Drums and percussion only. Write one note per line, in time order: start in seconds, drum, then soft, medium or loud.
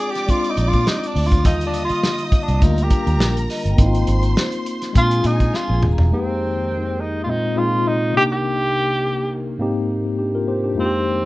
0.15 snare soft
0.15 closed hi-hat soft
0.29 kick medium
0.29 closed hi-hat medium
0.44 closed hi-hat medium
0.57 closed hi-hat medium
0.73 kick medium
0.73 closed hi-hat soft
0.87 snare loud
1.04 closed hi-hat soft
1.16 open hi-hat medium
1.32 kick medium
1.32 closed hi-hat medium
1.45 kick loud
1.45 closed hi-hat medium
1.61 closed hi-hat soft
1.74 closed hi-hat medium
1.89 closed hi-hat soft
2.03 snare loud
2.18 closed hi-hat soft
2.32 kick medium
2.32 closed hi-hat medium
2.48 closed hi-hat soft
2.62 kick medium
2.62 closed hi-hat medium
2.78 closed hi-hat medium
2.90 kick medium
2.90 closed hi-hat medium
3.07 closed hi-hat soft
3.20 snare loud
3.37 closed hi-hat medium
3.50 snare soft
3.50 open hi-hat medium
3.66 closed hi-hat medium
3.78 kick loud
3.78 closed hi-hat medium
3.95 closed hi-hat medium
4.07 closed hi-hat medium
4.23 closed hi-hat soft
4.37 snare loud
4.52 closed hi-hat medium
4.66 closed hi-hat medium
4.82 snare soft
4.82 closed hi-hat soft
4.95 kick medium
4.95 closed hi-hat medium
5.11 closed hi-hat medium
5.24 closed hi-hat medium
5.40 kick medium
5.40 closed hi-hat soft
5.54 snare medium
5.83 mid tom medium
5.98 floor tom medium